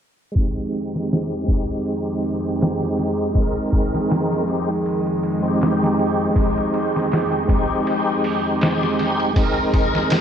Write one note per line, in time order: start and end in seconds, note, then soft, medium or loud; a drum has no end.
0.32 1.42 G#3 medium
0.32 1.43 C4 medium
0.36 10.21 F2 medium
0.36 10.21 D#3 medium
0.36 10.21 G#3 medium
0.36 1.45 D#4 medium
0.36 10.21 G#4 medium
0.36 kick medium
0.36 ride medium
0.41 1.47 G4 medium
0.56 ride soft
0.73 ride medium
0.95 snare soft
1.11 snare medium
1.11 ride medium
1.32 ride soft
1.44 3.29 G#3 medium
1.44 3.31 C4 medium
1.48 3.32 D#4 medium
1.48 3.34 G4 medium
1.48 kick medium
1.48 ride medium
1.86 ride medium
2.23 open hi-hat medium
2.61 snare loud
2.61 ride medium
2.82 snare soft
2.97 snare soft
2.97 ride medium
3.18 ride soft
3.31 4.42 G#3 medium
3.31 4.43 C4 medium
3.35 4.44 D#4 medium
3.35 kick loud
3.35 ride medium
3.39 4.46 A#4 medium
3.72 kick medium
3.72 ride medium
3.95 snare soft
4.10 snare medium
4.10 ride medium
4.33 snare soft
4.45 4.69 G#3 medium
4.45 4.69 C4 medium
4.45 4.70 D#4 medium
4.45 4.71 G4 medium
4.45 ride medium
4.69 ride soft
4.86 ride medium
5.07 ride soft
5.23 ride medium
5.40 6.30 G#3 medium
5.40 6.31 C4 medium
5.44 6.33 D#4 medium
5.44 6.34 G4 loud
5.44 ride soft
5.61 snare loud
5.61 ride medium
5.84 snare medium
5.99 ride medium
6.31 7.42 G#3 medium
6.31 7.43 C4 medium
6.36 7.45 D#4 medium
6.36 7.46 G4 medium
6.36 kick loud
6.36 ride medium
6.58 ride soft
6.74 ride medium
6.96 snare soft
7.12 snare loud
7.12 ride medium
7.32 ride soft
7.45 9.30 G#3 medium
7.45 9.31 C4 medium
7.45 kick medium
7.49 9.33 D#4 medium
7.49 ride medium
7.54 9.34 G4 medium
7.87 ride medium
8.24 open hi-hat medium
8.61 snare loud
8.61 ride medium
8.83 snare soft
8.99 snare soft
8.99 ride medium
9.20 ride soft
9.33 10.21 G#3 medium
9.33 10.21 C4 medium
9.33 kick loud
9.33 ride medium
9.39 10.21 D#4 medium
9.39 10.21 A#4 medium
9.74 kick medium
9.74 ride medium
9.95 snare medium
10.10 snare loud
10.10 ride medium